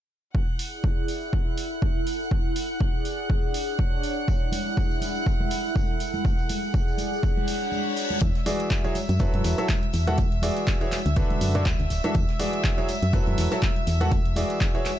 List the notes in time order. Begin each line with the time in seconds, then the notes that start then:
0.35 E4 F#5 F#6, kick
0.58 G#4, open hi-hat
0.69 D5 F#5
0.84 kick
1.08 open hi-hat
1.33 kick
1.58 A4, open hi-hat
1.82 kick
2.07 open hi-hat
2.31 kick
2.56 open hi-hat
2.72 G#4
2.76 D5
2.81 kick
3.05 open hi-hat
3.30 D4, kick
3.54 C#5, open hi-hat
3.79 kick
4.03 open hi-hat
4.28 E4, kick, tambourine
4.52 open hi-hat, tambourine, high conga
4.62 G#4 D5, tambourine
4.77 kick, tambourine
4.91 tambourine
5.01 open hi-hat, tambourine, high conga
5.16 tambourine
5.26 kick, tambourine
5.40 high conga
5.48 A4, open hi-hat, tambourine
5.65 tambourine
5.76 kick, tambourine, high conga
6.00 open hi-hat, tambourine
6.14 tambourine, high conga
6.25 kick, tambourine
6.38 tambourine
6.44 G#4
6.49 open hi-hat, tambourine, high conga
6.63 tambourine
6.70 D5
6.74 kick, tambourine
6.88 tambourine
6.98 open hi-hat, tambourine, high conga
7.13 tambourine
7.23 D4, kick, tambourine, reverse cymbal
7.37 high conga
7.42 C#5
7.47 open hi-hat, tambourine
7.61 tambourine
7.72 tambourine, high conga
7.96 open hi-hat, tambourine
8.10 tambourine, high conga
8.21 E2 E5 E6, kick, closed hi-hat, tambourine
8.35 snare, closed hi-hat
8.40 G#4
8.46 E3 E4 F#4 G#4 D5, closed hi-hat, open hi-hat, tambourine, high conga
8.60 closed hi-hat, tambourine
8.71 kick, snare, clap, closed hi-hat, tambourine
8.84 F#3 E4 F#4 G#4 C#5, closed hi-hat, tambourine
8.95 E4, closed hi-hat, open hi-hat, tambourine, high conga
9.09 F#2, closed hi-hat, tambourine
9.19 F#3 E4 F#4 A4 B4, kick, closed hi-hat, tambourine
9.34 F#2, closed hi-hat, high conga
9.44 E2, snare, closed hi-hat, open hi-hat, tambourine
9.51 A4
9.58 F#3 E4 F#4 A4 E5, closed hi-hat, tambourine
9.69 kick, snare, clap, closed hi-hat, tambourine, high conga
9.83 closed hi-hat
9.93 E2, closed hi-hat, open hi-hat, tambourine
10.07 E3 E4 F#4 A4 F#5, closed hi-hat, tambourine, high conga
10.18 D4, kick, closed hi-hat, tambourine
10.32 G#5, closed hi-hat
10.42 E3 E4 F#4 G#4 D5, closed hi-hat, open hi-hat, tambourine, high conga
10.57 closed hi-hat, tambourine
10.67 kick, snare, clap, closed hi-hat, tambourine
10.81 E3 E4 F#4 G#4 C#5, closed hi-hat, tambourine
10.92 clap, closed hi-hat, open hi-hat, tambourine, high conga
11.06 D2, closed hi-hat, tambourine
11.16 D3 D4 F#4 A4 B4, kick, closed hi-hat, tambourine
11.30 closed hi-hat, high conga
11.41 F#2, closed hi-hat, open hi-hat, tambourine
11.53 D3 D4 F#4 A4 C#5 D5, closed hi-hat, tambourine
11.66 D2, kick, snare, clap, closed hi-hat, tambourine, high conga
11.80 D2, closed hi-hat
11.90 D1, closed hi-hat, open hi-hat, tambourine
12.04 E3 D4 F#4 A4 E5, closed hi-hat, tambourine, high conga
12.14 E2, kick, closed hi-hat, tambourine
12.25 G#4, snare, closed hi-hat
12.39 E3 E4 F#4 G#4 D5, closed hi-hat, open hi-hat, tambourine, high conga
12.53 closed hi-hat, tambourine
12.63 kick, snare, clap, closed hi-hat, tambourine
12.78 F#3 E4 F#4 G#4 C#5, closed hi-hat, tambourine
12.88 E4, closed hi-hat, open hi-hat, tambourine, high conga
13.03 F#2, closed hi-hat
13.13 F#3 E4 F#4 A4 B4, kick, closed hi-hat, tambourine
13.27 F#2, closed hi-hat, high conga
13.38 E2, snare, closed hi-hat, open hi-hat, tambourine
13.45 A4
13.51 F#3 E4 F#4 A4 E5, snare, closed hi-hat, tambourine
13.62 kick, snare, clap, closed hi-hat, tambourine, high conga
13.76 closed hi-hat
13.87 E2, closed hi-hat, open hi-hat, tambourine
14.01 E3 E4 F#4 A4 F#5, closed hi-hat, tambourine, high conga
14.11 D4, kick, closed hi-hat, tambourine
14.25 G#5, closed hi-hat
14.36 E3 E4 F#4 G#4 D5, closed hi-hat, open hi-hat, tambourine, high conga
14.50 closed hi-hat, tambourine
14.61 kick, snare, clap, closed hi-hat, tambourine
14.75 E3 E4 F#4 G#4 C#5, closed hi-hat, tambourine
14.85 clap, closed hi-hat, open hi-hat, tambourine, high conga